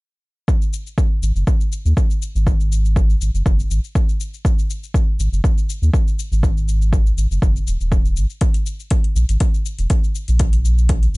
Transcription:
0.48 kick, shaker
0.62 shaker
0.73 shaker
0.87 shaker
0.98 kick, shaker
1.22 sub bass G#1, shaker
1.36 sub bass F#1, shaker
1.47 kick, shaker
1.61 shaker
1.72 shaker
1.85 sub bass D#2, shaker
1.97 kick, shaker
2.11 shaker
2.22 shaker
2.35 sub bass G#1, shaker
2.47 kick, shaker
2.60 shaker
2.72 shaker
2.85 shaker
2.96 kick, shaker
3.10 shaker
3.21 sub bass G#1, shaker
3.34 sub bass F#1, shaker
3.46 sub bass F#1, kick, shaker
3.59 shaker
3.70 sub bass G#1, shaker
3.84 shaker
3.95 kick, shaker
4.09 shaker
4.20 shaker
4.34 shaker
4.45 kick, shaker
4.59 shaker
4.70 shaker
4.84 shaker
4.94 kick, shaker
5.19 sub bass G#1, shaker
5.32 sub bass F#1, shaker
5.44 kick, shaker
5.58 shaker
5.70 shaker
5.82 sub bass D#2, shaker
5.94 kick, shaker
6.08 shaker
6.19 shaker
6.32 sub bass G#1, shaker
6.43 kick, shaker
6.57 shaker
6.68 shaker
6.82 shaker
6.93 kick, shaker
7.07 shaker
7.17 sub bass G#1, shaker
7.31 sub bass F#1, shaker
7.42 sub bass F#1, kick, shaker
7.56 shaker
7.67 sub bass D#1, shaker
7.81 sub bass D#1, shaker
7.92 kick, shaker
8.05 shaker
8.16 sub bass G#1, shaker
8.30 shaker
8.41 kick, closed hi-hat, shaker
8.54 closed hi-hat, shaker
8.66 shaker
8.80 shaker
8.90 kick, closed hi-hat, shaker
9.04 closed hi-hat
9.15 sub bass A#1, shaker
9.29 sub bass G#1, closed hi-hat, shaker
9.40 kick, closed hi-hat, shaker
9.54 shaker
9.66 shaker
9.79 sub bass E1, closed hi-hat, shaker
9.90 kick, closed hi-hat, shaker
10.04 shaker
10.15 shaker
10.28 sub bass A#1, closed hi-hat, shaker
10.39 kick, closed hi-hat, shaker
10.53 closed hi-hat, shaker
10.65 shaker
10.78 shaker
10.89 kick, closed hi-hat, shaker
11.03 closed hi-hat, shaker

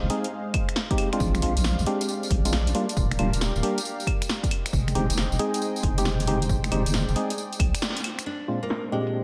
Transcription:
Already playing: analog synth pad G#3 C5 D#5 F5
0.03 wobble bass F1
0.10 synth stab G#3 C4 D#4 G#4, open hi-hat
0.24 closed hi-hat
0.54 kick, open hi-hat, claves
0.69 finger snap, closed hi-hat
0.76 snare
0.91 synth stab G#3 C4 D#4 G4, kick, closed hi-hat
0.98 open hi-hat, claves
1.13 synth stab G#3 C4 D4 F4, finger snap, closed hi-hat
1.20 wobble bass A#1, analog synth pad D5 F5, kick, tambourine
1.35 finger snap, closed hi-hat, tambourine
1.42 wobble bass A#1, synth stab G#3 C4 D4 F4, open hi-hat
1.57 wobble bass A#1, closed hi-hat, tambourine
1.64 snare, tambourine
1.79 wobble bass A#1, tambourine
1.86 synth stab G#3 C4 D4 G4, open hi-hat
2.01 closed hi-hat, tambourine
2.09 tambourine
2.23 tambourine
2.30 wobble bass A#1, kick, open hi-hat
2.45 synth stab G#3 C4 D4 F4, closed hi-hat, tambourine
2.53 snare
2.67 closed hi-hat, tambourine
2.75 synth stab G3 A#3 D4 F4, analog synth pad G4 A#4 F5, open hi-hat
2.89 closed hi-hat, tambourine
2.97 wobble bass D#1, kick, tambourine
3.11 finger snap, open hi-hat, tambourine
3.19 wobble bass D#1, synth stab G3 A#3 D4 F4, open hi-hat, claves
3.33 wobble bass D#1, closed hi-hat, tambourine
3.41 snare, tambourine
3.55 wobble bass D#1, tambourine
3.63 synth stab G3 A#3 D4 G4, open hi-hat
3.78 closed hi-hat, tambourine
3.85 tambourine
4.00 tambourine
4.07 kick, open hi-hat, claves
4.22 finger snap, closed hi-hat, tambourine
4.29 snare, tambourine
4.43 kick, closed hi-hat, tambourine
4.51 analog synth pad G#4 C5 D#5 G5, open hi-hat, claves
4.66 finger snap, closed hi-hat, tambourine
4.73 wobble bass F1, kick, tambourine
4.88 finger snap, closed hi-hat, tambourine
4.95 wobble bass F1, synth stab G#3 C4 D#4 G4, open hi-hat
5.10 wobble bass F1, closed hi-hat, tambourine
5.18 snare, tambourine
5.32 wobble bass F1, tambourine
5.39 synth stab G#3 C4 D#4 G#4, open hi-hat
5.54 closed hi-hat, tambourine
5.62 tambourine
5.76 tambourine
5.83 wobble bass F1, kick, open hi-hat
5.98 synth stab G#3 C4 D#4 G4, closed hi-hat, tambourine
6.05 snare, tambourine
6.20 closed hi-hat, tambourine
6.27 synth stab G#3 C4 D#4 G4, analog synth pad D5, open hi-hat
6.42 closed hi-hat, tambourine
6.49 wobble bass F1, kick, tambourine
6.64 finger snap, open hi-hat, tambourine
6.72 wobble bass F1, synth stab G#3 C4 D#4 G4, open hi-hat, claves
6.86 wobble bass F1, closed hi-hat, tambourine
6.94 snare, tambourine
7.08 wobble bass F1, tambourine
7.16 synth stab G#3 C4 D#4 G#4, open hi-hat
7.30 closed hi-hat, tambourine
7.38 tambourine
7.53 closed hi-hat, tambourine
7.60 wobble bass C2, kick, open hi-hat, claves
7.75 finger snap, closed hi-hat, tambourine
7.82 snare, tambourine
7.97 closed hi-hat, tambourine
8.04 open hi-hat, claves
8.19 finger snap, closed hi-hat, tambourine
8.26 analog synth pad G#3 A#3 F4 C5 D5, nylon-string guitar D4
8.41 closed hi-hat
8.48 synth stab A#2 G#3 C4 D4 F4
8.63 nylon-string guitar A#3, closed hi-hat
8.70 snare
8.92 synth stab A#2 G#3 C4 D4 G4, nylon-string guitar G#3
9.07 closed hi-hat

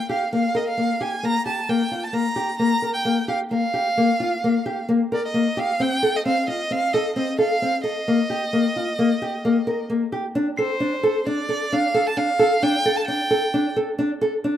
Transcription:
Already playing: violin G5
0.09 nylon-string guitar G4, violin F5
0.33 nylon-string guitar A#3, violin F5
0.55 nylon-string guitar A#4, violin D#5
0.68 violin F5
0.77 nylon-string guitar A#3
1.01 nylon-string guitar G4, violin G#5
1.23 nylon-string guitar A#3, violin A#5
1.46 nylon-string guitar G4, violin A5
1.69 nylon-string guitar A#3, violin G5
1.91 nylon-string guitar F4
2.03 violin A5
2.13 nylon-string guitar A#3, violin A#5
2.36 nylon-string guitar G4
2.59 nylon-string guitar A#3, violin A#5
2.82 nylon-string guitar A#4
2.93 violin G5
3.05 nylon-string guitar A#3
3.28 nylon-string guitar G4, violin F5
3.51 nylon-string guitar A#3, violin F5
3.74 nylon-string guitar G4
3.97 nylon-string guitar A#3
4.20 nylon-string guitar F4
4.44 nylon-string guitar A#3
4.66 nylon-string guitar G4
4.89 nylon-string guitar A#3
5.12 nylon-string guitar A#4, violin D5
5.25 violin D#5
5.34 nylon-string guitar A#3
5.57 nylon-string guitar G4, violin F5
5.80 nylon-string guitar C4, violin G5
6.03 nylon-string guitar A4
6.16 violin D#5
6.25 nylon-string guitar C4, violin F5
6.48 nylon-string guitar F4, violin D#5
6.71 nylon-string guitar C4, violin F5
6.93 nylon-string guitar A4, violin D#5
7.15 nylon-string guitar C4, violin D#5
7.38 nylon-string guitar A4, violin F5
7.62 nylon-string guitar C4
7.84 nylon-string guitar A4, violin D#5
8.08 nylon-string guitar A#3
8.30 nylon-string guitar G4
8.53 nylon-string guitar A#3
8.76 nylon-string guitar F4
8.99 nylon-string guitar A#3
9.22 nylon-string guitar G4
9.45 nylon-string guitar A#3
9.67 nylon-string guitar A#4
9.90 nylon-string guitar A#3
10.12 nylon-string guitar G4
10.35 nylon-string guitar D4
10.57 nylon-string guitar A4, violin C5, glockenspiel C7
10.80 nylon-string guitar D4
11.03 nylon-string guitar A4
11.26 nylon-string guitar D4, violin D5
11.49 nylon-string guitar A4
11.72 nylon-string guitar D4, violin F5
11.94 nylon-string guitar A4
12.07 violin A5
12.17 nylon-string guitar D4, violin F5
12.39 nylon-string guitar A4
12.62 nylon-string guitar D4, violin G5
12.85 nylon-string guitar A4, glockenspiel A6
12.97 violin A5
13.07 nylon-string guitar D4, violin G5
13.30 nylon-string guitar A4
13.54 nylon-string guitar D4
13.76 nylon-string guitar A4
13.99 nylon-string guitar D4
14.21 nylon-string guitar A4
14.44 nylon-string guitar D4

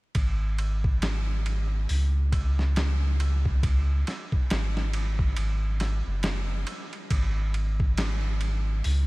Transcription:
0.15 sub bass G#1, kick, ride
0.58 ride
0.84 kick
1.02 snare, ride
1.46 ride
1.89 sub bass C#2, open hi-hat
2.32 kick, ride
2.59 snare
2.76 snare, ride
3.20 ride
3.45 kick
3.63 kick, ride
4.07 snare, ride
4.32 kick
4.50 sub bass G#1, snare, ride
4.77 snare
4.93 ride
5.19 kick
5.36 sub bass G#1, ride
5.80 snare, ride
6.07 sub bass F#1
6.23 snare, ride
6.67 ride
6.93 ride
7.10 sub bass G#1, kick, ride
7.54 ride
7.80 kick
7.98 snare, ride
8.41 ride
8.84 sub bass C#2, open hi-hat

